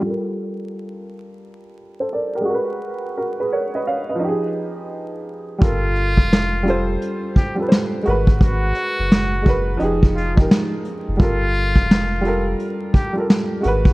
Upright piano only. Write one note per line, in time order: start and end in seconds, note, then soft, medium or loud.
0.00 2.40 G3 medium
0.00 2.42 F4 medium
0.06 1.76 A4 medium
0.10 1.78 A#4 medium
2.00 2.12 A4 soft
2.00 2.12 C5 medium
2.13 2.34 A#4 soft
2.13 2.34 D5 medium
2.35 2.68 G4 soft
2.35 2.48 A#4 medium
2.41 4.15 G#3 medium
2.45 3.15 F#4 medium
2.50 3.16 A#4 medium
2.54 3.19 B4 medium
3.17 3.39 F#4 soft
3.17 3.38 A#4 medium
3.40 3.52 G#4 medium
3.40 3.52 B4 medium
3.52 3.74 A#4 medium
3.52 3.73 C#5 medium
3.75 3.87 B4 medium
3.75 3.87 D#5 medium
3.87 4.09 C#5 medium
3.87 4.08 F5 medium
4.09 4.43 B4 soft
4.09 4.42 D#5 medium
4.15 5.55 F3 medium
4.20 5.58 D#4 medium
4.24 5.60 G4 medium
4.28 5.62 G#4 medium
5.58 6.60 G3 medium
5.58 6.61 F4 medium
5.63 6.62 A4 medium
5.63 6.63 A#4 medium
6.63 7.50 G3 medium
6.63 7.51 F4 medium
6.67 7.52 A4 medium
6.67 7.53 C5 medium
7.55 8.04 G3 medium
7.55 8.05 F4 medium
7.60 8.06 A4 medium
7.60 7.65 B4 medium
7.68 8.11 C5 medium
8.03 9.38 G#3 medium
8.03 9.39 F#4 medium
8.07 9.40 A#4 medium
8.07 9.41 B4 medium
9.42 9.79 G#3 medium
9.42 9.80 F#4 medium
9.47 9.81 A#4 medium
9.47 9.82 B4 medium
9.77 10.32 F3 medium
9.77 10.33 D#4 medium
9.82 10.34 G4 medium
9.82 10.35 G#4 loud
10.34 11.15 F3 medium
10.34 11.16 D#4 medium
10.39 11.17 G4 medium
10.39 11.18 A#4 medium
11.17 12.18 G3 medium
11.17 12.19 F4 medium
11.21 12.21 A4 medium
11.21 12.22 A#4 medium
12.21 13.08 G3 medium
12.21 13.09 F4 medium
12.26 13.10 A4 medium
12.26 13.11 A#4 medium
13.13 13.62 G3 medium
13.13 13.63 F4 medium
13.18 13.65 A4 medium
13.18 13.64 A#4 medium
13.61 13.93 G#3 medium
13.61 13.93 F#4 medium
13.65 13.93 A#4 medium
13.65 13.93 B4 loud